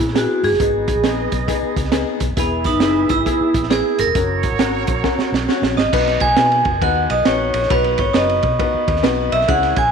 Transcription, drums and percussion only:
0.08 snare
0.16 snare, closed hi-hat
0.44 open hi-hat
0.53 snare
0.60 kick, closed hi-hat
0.88 kick, closed hi-hat
1.04 snare, closed hi-hat
1.32 kick, closed hi-hat
1.48 kick, closed hi-hat
1.76 kick, closed hi-hat
1.84 snare
1.92 snare, closed hi-hat
2.20 kick, closed hi-hat
2.37 kick, closed hi-hat
2.64 kick, closed hi-hat
2.80 snare, closed hi-hat
3.09 kick, closed hi-hat
3.26 kick, closed hi-hat
3.54 kick, closed hi-hat
3.63 snare
3.71 snare, closed hi-hat
3.99 closed hi-hat
4.15 kick, closed hi-hat
4.43 kick, closed hi-hat
4.59 snare, closed hi-hat
4.87 kick, closed hi-hat
5.04 kick, snare
5.19 snare
5.34 snare
5.49 snare
5.63 snare
5.78 snare
5.93 kick, crash
6.07 snare, ride
6.20 kick, ride
6.37 snare, ride
6.52 ride
6.65 kick, ride
6.82 kick, ride
7.10 ride
7.25 snare, ride
7.54 ride
7.63 snare
7.70 kick, ride
7.84 ride
7.98 kick, ride
8.14 snare, ride
8.29 ride
8.43 kick, ride
8.60 kick, ride
8.88 kick, ride
8.96 snare
9.04 snare, ride
9.32 ride
9.41 snare
9.48 kick, ride
9.63 snare, ride
9.76 kick, ride

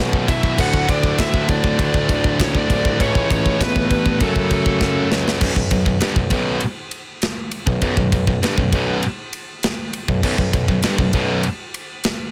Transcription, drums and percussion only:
0.13 kick
0.28 kick, ride
0.43 kick
0.58 kick, crash
0.73 kick
0.89 kick, ride
1.03 kick
1.19 kick, snare, ride
1.34 kick
1.49 kick, ride
1.64 kick
1.79 kick, ride
1.94 kick
2.09 kick, ride
2.24 kick
2.40 kick, snare, ride
2.55 kick
2.70 kick, ride
2.85 kick
3.00 kick, ride
3.15 kick
3.31 kick, ride
3.46 kick
3.61 kick, snare, ride
3.76 kick
3.90 kick, ride
4.06 kick
4.20 kick, ride
4.36 kick
4.51 kick, ride
4.66 kick
4.81 kick, snare
5.12 snare
5.28 snare
5.41 kick, crash
5.56 kick
5.71 kick, ride
5.86 kick
6.01 snare, ride
6.16 kick
6.30 kick, ride
6.60 ride
6.91 ride
7.22 snare, ride
7.51 ride
7.67 kick
7.81 kick, ride
7.97 kick
8.12 kick, ride
8.27 kick
8.43 snare, ride
8.58 kick
8.73 kick, ride
9.03 ride
9.33 ride
9.63 snare, ride
9.93 ride
10.08 kick
10.23 kick, crash
10.38 kick
10.53 kick, ride
10.68 kick
10.82 snare, ride
10.98 kick
11.13 kick, ride
11.43 ride
11.74 ride
12.04 snare, ride

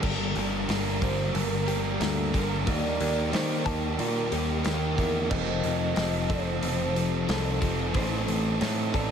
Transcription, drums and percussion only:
0.03 kick, crash
0.35 open hi-hat
0.69 snare, open hi-hat
1.02 kick, open hi-hat
1.35 open hi-hat
1.68 open hi-hat
2.01 snare, open hi-hat
2.34 kick, open hi-hat
2.67 kick, open hi-hat
3.00 open hi-hat
3.33 snare, open hi-hat
3.66 kick, open hi-hat
3.99 open hi-hat
4.32 open hi-hat
4.64 snare, open hi-hat
4.98 kick, open hi-hat
5.31 kick, crash
5.64 open hi-hat
5.96 snare, open hi-hat
6.30 kick, open hi-hat
6.63 open hi-hat
6.96 open hi-hat
7.29 snare, open hi-hat
7.62 kick, open hi-hat
7.94 kick, open hi-hat
8.28 open hi-hat
8.61 snare, open hi-hat
8.94 kick, open hi-hat

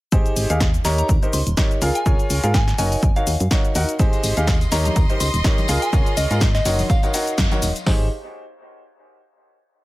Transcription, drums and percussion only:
0.12 kick, closed hi-hat, cabasa
0.26 closed hi-hat, cabasa
0.36 open hi-hat, cabasa
0.50 closed hi-hat, cabasa
0.60 kick, snare, closed hi-hat, cabasa
0.74 closed hi-hat, cabasa
0.85 snare, open hi-hat, cabasa
0.98 closed hi-hat, cabasa
1.09 kick, closed hi-hat, cabasa
1.23 closed hi-hat, cabasa
1.33 open hi-hat, cabasa
1.47 closed hi-hat, cabasa
1.57 kick, snare, closed hi-hat, cabasa
1.71 closed hi-hat, cabasa
1.82 open hi-hat, cabasa
1.95 closed hi-hat, cabasa
2.06 kick, closed hi-hat, cabasa
2.19 closed hi-hat, cabasa
2.30 open hi-hat, cabasa
2.44 closed hi-hat, cabasa
2.54 kick, snare, closed hi-hat, cabasa
2.68 snare, closed hi-hat, cabasa
2.79 open hi-hat, cabasa
2.92 open hi-hat, cabasa
3.03 kick, closed hi-hat, cabasa
3.16 closed hi-hat, cabasa
3.27 open hi-hat, cabasa
3.40 closed hi-hat, cabasa
3.51 kick, snare, closed hi-hat, cabasa
3.65 closed hi-hat, cabasa
3.75 open hi-hat, cabasa
3.89 closed hi-hat, cabasa
3.99 kick, closed hi-hat, tambourine, cabasa
4.13 closed hi-hat, tambourine, cabasa
4.24 open hi-hat, tambourine, cabasa
4.37 closed hi-hat, tambourine, cabasa
4.47 kick, snare, closed hi-hat, tambourine, cabasa
4.61 closed hi-hat, tambourine, cabasa
4.72 snare, open hi-hat, tambourine, cabasa
4.85 closed hi-hat, tambourine, high conga, cabasa
4.96 kick, closed hi-hat, tambourine, cabasa
5.10 closed hi-hat, cabasa
5.20 open hi-hat, tambourine, cabasa
5.34 closed hi-hat, tambourine, cabasa
5.44 kick, snare, closed hi-hat, tambourine, cabasa
5.58 closed hi-hat, tambourine, high conga, cabasa
5.68 open hi-hat, tambourine, cabasa
5.82 closed hi-hat, tambourine, cabasa
5.93 kick, closed hi-hat, tambourine, cabasa
6.06 closed hi-hat, tambourine, cabasa
6.17 open hi-hat, tambourine, cabasa
6.31 closed hi-hat, tambourine, cabasa
6.40 kick, snare, closed hi-hat, tambourine, cabasa
6.55 snare, closed hi-hat, tambourine, cabasa
6.65 open hi-hat, tambourine, cabasa
6.79 open hi-hat, tambourine, high conga, cabasa
6.89 kick, closed hi-hat, tambourine, cabasa
7.03 closed hi-hat, tambourine, cabasa
7.14 open hi-hat, tambourine, cabasa
7.27 closed hi-hat, tambourine, cabasa
7.38 kick, snare, closed hi-hat, tambourine, cabasa
7.51 closed hi-hat, tambourine, high conga, cabasa
7.62 open hi-hat, tambourine, cabasa
7.76 closed hi-hat, tambourine, cabasa
7.87 kick, snare, open hi-hat

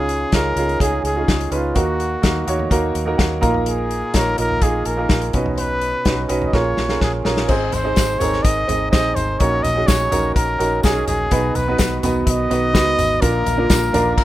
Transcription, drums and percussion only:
0.09 closed hi-hat
0.32 kick, snare, closed hi-hat
0.57 closed hi-hat
0.69 closed hi-hat
0.80 kick, closed hi-hat
1.05 closed hi-hat
1.28 kick, snare, closed hi-hat
1.41 closed hi-hat
1.52 closed hi-hat
1.76 kick, closed hi-hat
2.00 closed hi-hat
2.23 kick, snare, closed hi-hat
2.48 closed hi-hat
2.59 floor tom
2.71 kick, closed hi-hat
2.95 closed hi-hat
3.19 kick, snare, closed hi-hat
3.43 kick, closed hi-hat
3.54 floor tom
3.66 closed hi-hat
3.91 closed hi-hat
4.14 kick, snare, closed hi-hat
4.38 closed hi-hat
4.50 floor tom
4.62 kick, closed hi-hat
4.85 closed hi-hat
5.09 kick, snare, closed hi-hat
5.22 closed hi-hat
5.33 kick, closed hi-hat
5.46 floor tom
5.58 closed hi-hat
5.81 closed hi-hat
6.05 kick, snare, closed hi-hat
6.29 closed hi-hat
6.42 floor tom
6.53 kick, snare
6.77 snare
6.89 snare
7.01 kick, snare
7.25 snare
7.37 snare
7.49 kick, crash, tambourine
7.72 closed hi-hat, floor tom, tambourine
7.96 kick, snare, closed hi-hat, tambourine
8.20 closed hi-hat, floor tom, tambourine
8.33 snare
8.45 kick, closed hi-hat, tambourine
8.69 closed hi-hat, floor tom, tambourine
8.93 kick, snare, closed hi-hat, tambourine
9.16 closed hi-hat, floor tom, tambourine
9.40 kick, closed hi-hat, tambourine
9.64 closed hi-hat, floor tom, tambourine
9.88 kick, snare, closed hi-hat, tambourine
10.12 closed hi-hat, floor tom, tambourine
10.36 kick, closed hi-hat, tambourine
10.60 closed hi-hat, tambourine
10.83 kick, snare, closed hi-hat, tambourine
11.07 closed hi-hat, floor tom, tambourine
11.31 kick, closed hi-hat, tambourine
11.55 closed hi-hat, floor tom, tambourine
11.78 kick, snare, closed hi-hat, tambourine
12.03 closed hi-hat, floor tom, tambourine
12.27 kick, closed hi-hat, tambourine
12.51 closed hi-hat, tambourine
12.75 kick, snare, closed hi-hat, tambourine
12.99 closed hi-hat, floor tom, tambourine
13.22 kick, closed hi-hat, tambourine
13.46 closed hi-hat, floor tom, tambourine
13.70 kick, snare, closed hi-hat, tambourine
13.94 closed hi-hat, floor tom, tambourine
14.18 kick, crash

